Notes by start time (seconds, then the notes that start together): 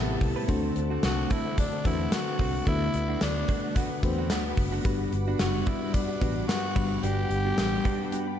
Already playing: A1 A2 C3 A3 B3 C4 E4 G4 A4 B4 E5 A5 B5
0.09 muted clean electric guitar stroke
0.21 C2, muted clean electric guitar stroke, kick, open hi-hat
0.36 C4 E4 B4
0.48 D2 D3 A3 C4 D4 F#4 C5 F#5 D6, kick, closed hi-hat
0.76 D2, muted clean electric guitar stroke, closed hi-hat
0.90 A3 C4 F#4
1.03 C2 F#4, muted clean electric guitar stroke, snare, closed hi-hat, tambourine
1.18 muted clean electric guitar stroke
1.30 A3 C4 E4 F#4, kick, closed hi-hat
1.46 A3 C4 F#4
1.58 D4, muted clean electric guitar stroke, kick, closed hi-hat
1.73 muted clean electric guitar stroke
1.84 E2 A3 C4 D4 E4 F#4 B4, kick, closed hi-hat
1.92 C5
2.00 A3 C4 F#4
2.12 F#4, snare, closed hi-hat, tambourine
2.27 muted clean electric guitar stroke
2.39 C2 A3 C4 F#4, kick, open hi-hat
2.55 muted clean electric guitar stroke
2.66 D2 D3 A3 B3 D4 E4 F#4 B4 B5, kick, closed hi-hat
2.94 D2, closed hi-hat
3.09 A3 D4 F#4
3.21 D2 D4, muted clean electric guitar stroke, snare, closed hi-hat, tambourine
3.36 muted clean electric guitar stroke
3.48 A3 D4 F#4, kick, closed hi-hat
3.64 A3 D4 F#4
3.76 A3 B3 D4 F#4, kick, closed hi-hat
3.91 muted clean electric guitar stroke
4.03 E2 A3 B3 C4 D4 F#4 B4, muted clean electric guitar stroke, kick, closed hi-hat
4.18 A3 D4 F#4
4.30 D2 A3 B3 D4 F#4, snare, closed hi-hat, tambourine
4.45 muted clean electric guitar stroke
4.57 F#1, muted clean electric guitar stroke, kick, open hi-hat
4.72 A3 D4 F#4
4.84 G1 G2 G3 B3 D4 F#4 B4 D6, kick, closed hi-hat
5.12 G1, muted clean electric guitar stroke, closed hi-hat
5.27 B3 D4 F#4
5.39 F#1 F#4, muted clean electric guitar stroke, snare, closed hi-hat, tambourine
5.54 muted clean electric guitar stroke
5.66 B3 D4 E4 F#4, kick, closed hi-hat
5.82 B3 D4 F#4
5.94 D4, muted clean electric guitar stroke, kick, closed hi-hat
6.09 muted clean electric guitar stroke
6.21 A1 G3 B3 D4 F#4 B4, kick, closed hi-hat
6.36 B3 D4 F#4
6.48 F#4, snare, closed hi-hat, tambourine
6.64 muted clean electric guitar stroke
6.75 G1 G2 G3 B3 D4 F#4 B4 F#5 B5, kick, crash
6.91 muted clean electric guitar stroke
7.03 G1 B3 D4 F#4 G4, closed hi-hat
7.30 G1, muted clean electric guitar stroke, closed hi-hat
7.45 B3 D4 F#4
7.57 A1, muted clean electric guitar stroke, snare, closed hi-hat, tambourine
7.72 muted clean electric guitar stroke
7.85 B3 D4 F#4 A5, kick, closed hi-hat
8.00 B3 D4 F#4
8.12 B3 D4 F#4 G5, closed hi-hat
8.27 B5, muted clean electric guitar stroke